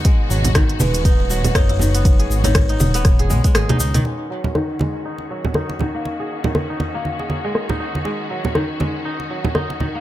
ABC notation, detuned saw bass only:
X:1
M:4/4
L:1/8
Q:"Swing 16ths" 1/4=120
K:D#phr
V:1 name="Detuned saw bass" clef=bass
z G,,,2 D,,,3 F,,,2- | F,,, G,,,2 D,,,2 B,,, G,,, C,, | z8 | z8 |
z8 |]